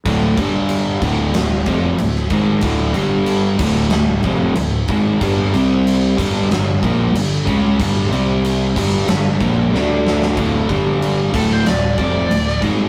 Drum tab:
CC |x-x-x-x-x-x-x-x-|x-x-x-x-x-x-x-x-|x-x-x-x-x-x-x-x-|x-x-x-x-x-x-----|
SD |--------o----o--|--------o-------|--------o----o--|--------o---o-oo|
BD |o-o---o---o---o-|o-----o---o---o-|o-----o---o---o-|o-----o---o-----|

CC |x-x-x-x-x-x-x-x-|
SD |--------o----o--|
BD |o-o---o---o---o-|